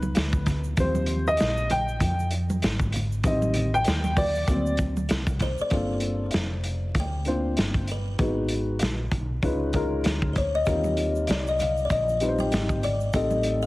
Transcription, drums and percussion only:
0.03 high conga, shaker
0.15 snare, closed hi-hat, shaker
0.33 kick, shaker
0.46 kick, snare, closed hi-hat, low conga, shaker
0.64 shaker
0.77 kick, closed hi-hat, shaker
0.95 high conga, shaker
1.06 closed hi-hat, shaker
1.27 shaker
1.37 snare, closed hi-hat, shaker
1.57 shaker
1.70 closed hi-hat, high conga, low conga, shaker
1.88 shaker
2.00 kick, closed hi-hat, shaker
2.19 shaker
2.31 closed hi-hat, shaker
2.50 high conga, shaker
2.62 snare, closed hi-hat, shaker
2.79 kick, shaker
2.92 closed hi-hat, low conga, shaker
3.12 shaker
3.24 kick, closed hi-hat, shaker
3.42 high conga, shaker
3.54 closed hi-hat, low conga, shaker
3.75 shaker
3.84 snare, closed hi-hat, shaker
4.04 high conga, shaker
4.17 kick, open hi-hat, high conga, low conga, shaker
4.35 shaker
4.47 kick, closed hi-hat, shaker
4.66 shaker
4.77 kick, closed hi-hat, shaker
4.97 high conga, shaker
5.09 snare, closed hi-hat, shaker
5.27 kick, closed hi-hat, shaker
5.40 kick, snare, closed hi-hat, low conga, shaker
5.58 shaker
5.70 kick, closed hi-hat
6.00 closed hi-hat
6.31 snare, closed hi-hat
6.64 closed hi-hat
6.95 kick, closed hi-hat
7.25 closed hi-hat
7.57 snare, closed hi-hat
7.74 kick, closed hi-hat
7.87 closed hi-hat
8.19 kick, closed hi-hat
8.48 closed hi-hat
8.79 snare, closed hi-hat
9.12 kick, closed hi-hat
9.43 kick, closed hi-hat
9.73 kick, closed hi-hat
10.04 snare, closed hi-hat
10.22 kick
10.36 kick, closed hi-hat
10.66 kick, closed hi-hat, shaker
10.84 high conga, shaker
10.97 closed hi-hat, shaker
11.16 shaker
11.27 snare, closed hi-hat, high conga, shaker
11.47 shaker
11.59 closed hi-hat, high conga, low conga, shaker
11.77 shaker
11.90 kick, closed hi-hat, shaker
12.08 shaker
12.20 closed hi-hat, shaker
12.39 high conga, shaker
12.52 snare, closed hi-hat, shaker
12.69 kick, shaker
12.83 closed hi-hat, low conga, shaker
13.00 shaker
13.13 kick, closed hi-hat, shaker
13.31 high conga, shaker
13.43 closed hi-hat, shaker
13.62 shaker

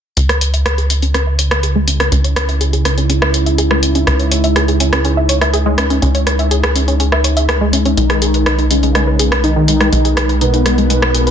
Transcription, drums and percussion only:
0.17 closed hi-hat
0.29 cross-stick, closed hi-hat
0.41 closed hi-hat
0.54 closed hi-hat
0.66 cross-stick, closed hi-hat
0.78 closed hi-hat
0.90 closed hi-hat
1.02 closed hi-hat
1.14 cross-stick, closed hi-hat
1.39 closed hi-hat
1.51 cross-stick, closed hi-hat
1.63 closed hi-hat
1.88 closed hi-hat
2.00 cross-stick, closed hi-hat
2.12 closed hi-hat
2.24 closed hi-hat
2.36 cross-stick, closed hi-hat
2.49 closed hi-hat
2.61 closed hi-hat
2.73 closed hi-hat
2.85 cross-stick, closed hi-hat
2.98 closed hi-hat
3.10 closed hi-hat
3.22 cross-stick
3.34 closed hi-hat
3.46 closed hi-hat
3.58 closed hi-hat
3.71 cross-stick
3.83 closed hi-hat
3.95 closed hi-hat
4.07 cross-stick, closed hi-hat
4.20 closed hi-hat
4.32 closed hi-hat
4.44 closed hi-hat
4.56 cross-stick, closed hi-hat
4.68 closed hi-hat
4.80 closed hi-hat
4.93 cross-stick, closed hi-hat
5.05 closed hi-hat
5.29 closed hi-hat
5.41 cross-stick, closed hi-hat
5.54 closed hi-hat
5.78 cross-stick, closed hi-hat
5.90 closed hi-hat
6.02 closed hi-hat
6.15 closed hi-hat
6.27 cross-stick, closed hi-hat
6.39 closed hi-hat
6.51 closed hi-hat
6.64 cross-stick, closed hi-hat
6.76 closed hi-hat
6.88 closed hi-hat
7.00 closed hi-hat
7.12 cross-stick
7.24 closed hi-hat
7.37 closed hi-hat
7.49 cross-stick, closed hi-hat
7.73 closed hi-hat
7.85 closed hi-hat
7.97 closed hi-hat
8.10 cross-stick, closed hi-hat
8.22 closed hi-hat
8.34 closed hi-hat
8.46 cross-stick, closed hi-hat
8.59 closed hi-hat
8.71 closed hi-hat
8.83 closed hi-hat
8.95 cross-stick, closed hi-hat
9.19 closed hi-hat
9.32 cross-stick, closed hi-hat
9.44 closed hi-hat
9.68 closed hi-hat
9.81 cross-stick, closed hi-hat
9.93 closed hi-hat
10.05 closed hi-hat
10.17 cross-stick, closed hi-hat
10.29 closed hi-hat
10.41 closed hi-hat
10.54 closed hi-hat
10.66 cross-stick, closed hi-hat
10.78 closed hi-hat
10.90 closed hi-hat
11.02 cross-stick
11.15 closed hi-hat
11.27 closed hi-hat

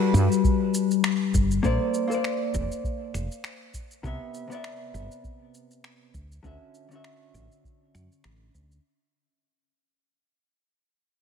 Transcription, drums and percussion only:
0.15 shaker
0.32 shaker
0.44 kick, shaker
0.74 shaker
0.91 shaker
1.04 finger snap, shaker
1.34 kick, shaker
1.51 shaker
1.64 kick, shaker
1.94 shaker
2.11 shaker
2.24 finger snap, shaker
2.54 kick, shaker
2.72 shaker
2.84 kick, shaker
3.14 finger snap, shaker
3.32 shaker
3.44 finger snap, shaker
3.74 kick, shaker
3.91 shaker
4.04 kick, shaker
4.34 shaker
4.51 shaker
4.64 finger snap, shaker
4.95 shaker
5.12 shaker
5.24 kick, shaker
5.54 shaker
5.71 shaker
5.84 finger snap, shaker
6.14 kick, shaker
6.32 shaker
6.44 kick, shaker
6.75 shaker
6.91 shaker
7.04 finger snap, shaker
7.34 kick, shaker
7.52 shaker
7.64 kick, shaker
7.95 finger snap, shaker
8.12 shaker
8.24 finger snap, shaker
8.54 kick, shaker
8.72 shaker

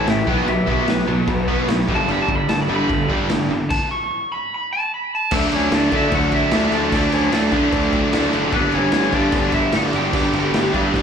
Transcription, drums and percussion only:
0.07 snare, crash
0.27 kick
0.48 crash
0.68 kick
0.88 snare, crash
1.27 kick, crash
1.48 kick
1.68 snare, crash
1.89 kick
2.08 crash
2.28 kick
2.49 snare, crash
2.90 kick, crash
3.10 kick
3.29 snare, crash
3.70 kick, crash
5.31 kick, crash
5.52 crash
5.72 snare, crash
5.92 kick, crash
6.12 kick, crash
6.32 kick, crash
6.51 snare, crash
6.72 crash
6.92 kick, crash
7.12 crash
7.32 snare, crash
7.52 kick, crash
7.72 kick, crash
7.93 kick, crash
8.13 snare, crash
8.33 crash
8.52 kick, crash
8.72 crash
8.92 snare, crash
9.12 kick, crash
9.32 kick, crash
9.52 kick, crash
9.72 snare, crash
9.93 crash
10.13 kick, crash
10.33 crash
10.54 snare, crash
10.74 kick, crash
10.94 kick, snare

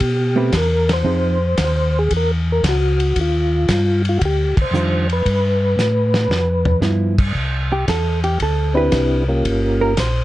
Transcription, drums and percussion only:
0.00 kick, ride
0.53 kick, snare, hi-hat pedal, ride
0.89 snare, ride
1.58 kick, snare, hi-hat pedal, ride
2.11 kick, ride
2.64 kick, snare, hi-hat pedal, ride
3.00 ride
3.16 kick, ride
3.69 kick, snare, hi-hat pedal, ride
4.05 ride
4.21 kick, ride
4.57 kick, crash
4.74 hi-hat pedal
5.10 ride
5.26 kick, ride
5.79 snare, hi-hat pedal
6.14 snare
6.31 snare
6.65 floor tom
6.82 snare, hi-hat pedal
7.18 kick, crash
7.35 kick
7.88 kick, snare, hi-hat pedal, ride
8.24 ride
8.40 kick, ride
8.92 kick, snare, hi-hat pedal, ride
9.45 kick, ride
9.97 kick, snare, hi-hat pedal, ride

